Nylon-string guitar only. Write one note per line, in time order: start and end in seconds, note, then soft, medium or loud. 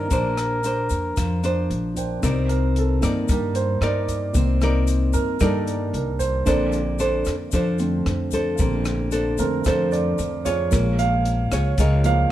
0.11 1.14 A#3 medium
0.11 0.59 D4 medium
0.11 0.60 C5 medium
0.64 1.39 D4 medium
0.64 1.40 C5 medium
1.17 2.20 F3 medium
1.44 2.18 D4 medium
1.44 2.19 C5 medium
2.23 3.26 C4 medium
2.23 2.98 D#4 medium
2.23 2.98 A#4 medium
2.23 2.98 D5 medium
3.02 3.77 D#4 medium
3.02 3.77 A#4 medium
3.02 3.78 D5 medium
3.29 4.32 G3 medium
3.82 4.57 D#4 medium
3.82 4.57 A#4 medium
3.82 4.57 D5 medium
4.37 5.39 C4 medium
4.62 5.37 D#4 medium
4.62 5.37 A#4 medium
4.62 5.37 D5 medium
5.40 6.44 G3 medium
5.40 6.12 D#4 medium
5.40 6.12 A#4 medium
5.40 6.12 D5 medium
6.46 7.50 A#3 medium
6.46 6.80 D4 medium
6.46 6.81 A4 medium
6.46 6.81 C5 medium
6.99 7.34 D4 medium
6.99 7.34 A4 medium
6.99 7.34 C5 medium
7.53 8.57 F3 medium
7.53 8.05 D4 medium
7.53 8.06 A4 medium
7.53 8.06 C5 medium
8.33 9.08 D4 medium
8.33 9.08 A4 medium
8.33 9.08 C5 medium
8.59 9.63 A#3 medium
9.12 9.46 D4 medium
9.12 9.46 A4 medium
9.12 9.46 C5 medium
9.66 10.69 F3 medium
9.66 10.18 D4 medium
9.66 10.19 A4 medium
9.66 10.19 C5 medium
10.46 11.21 F4 medium
10.46 11.21 G#4 medium
10.46 11.21 C#5 medium
10.72 11.75 A#3 medium
11.52 11.74 F4 medium
11.52 11.74 G#4 medium
11.52 11.74 C#5 medium
11.79 12.32 A#3 medium
11.79 12.27 F4 medium
11.79 12.27 G#4 medium
11.79 12.27 C#5 medium